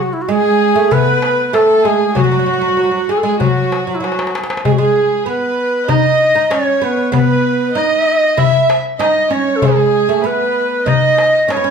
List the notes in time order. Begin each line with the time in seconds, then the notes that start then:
0.03 F#4
0.13 E4
0.21 F#4
0.29 G#3 G#4
0.76 A3
0.91 B3 B4, darbuka dum
1.07 darbuka ka
1.22 darbuka tek
1.38 darbuka ka
1.48 B4
1.53 A3 A4, darbuka tek
1.84 G#3 G#4, darbuka ka
2.15 F#3 F#4, darbuka dum
2.24 F#3
2.31 F#3
2.39 F#3
2.46 F#3, darbuka ka
2.53 F#3
2.61 F#3
2.68 F#3
2.77 F#3, darbuka ka
2.84 F#3
2.91 F#3
3.09 G#3 G#4, darbuka ka
3.17 A4
3.23 G#3 G#4
3.40 F#3 F#4, darbuka dum
3.72 darbuka tek
3.87 F#3 F#4, darbuka ka
3.95 E4
4.00 F#3 F#4, darbuka tek
4.12 darbuka ka
4.19 darbuka tek
4.27 darbuka ka
4.35 darbuka tek
4.44 darbuka ka
4.50 darbuka tek
4.57 darbuka ka
4.65 G#3 G#4, darbuka dum
4.72 F#4
4.78 G#3 G#4, darbuka ka
4.96 darbuka ka
5.26 B3 B4
5.88 D#4 D#5, darbuka dum
6.05 darbuka ka
6.35 D#4, darbuka ka
6.51 C#4 C#5, darbuka tek
6.81 B3 B4, darbuka ka
7.12 B3 B4, darbuka dum
7.45 darbuka ka
7.75 D#4 D#5
8.37 E4 E5, darbuka dum
8.54 darbuka ka
8.70 darbuka tek
8.85 darbuka ka
8.99 D#4 D#5, darbuka tek
9.30 C#4 C#5, darbuka ka
9.56 A4
9.61 G#3 G#4, darbuka dum
9.79 darbuka ka
9.94 darbuka ka
10.09 A3
10.24 B3 B4
10.86 D#4 D#5, darbuka dum
11.04 darbuka ka
11.18 darbuka tek
11.35 darbuka ka
11.48 C#4 C#5, darbuka tek
11.57 B3
11.64 C#4